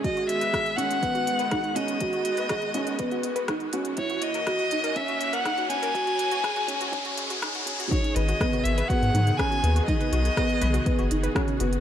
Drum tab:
HH |xxxxxxxxxxxxxxxx|xxxxxxxxxxxxxxxx|xxxxxxxxxxxxxxxx|xxxxxxxxxxxxxxxx|
SD |----r-------r---|----r-------r---|----r-------r---|----r-------r---|
T2 |----o-----o-----|o-----o-----o---|--o-----o-----o-|----o-----o-----|
BD |o---o---o---o---|o---o---o---o---|o---o---o---o---|o---o---o---o---|

HH |xxxxxxxxxxxxxxxx|xxxxxxxxxxxxxxxx|
SD |----r-------r---|----r-------r---|
T2 |----o-----o-----|o-----o-----o---|
BD |o---o---o---o---|o---o---o---o---|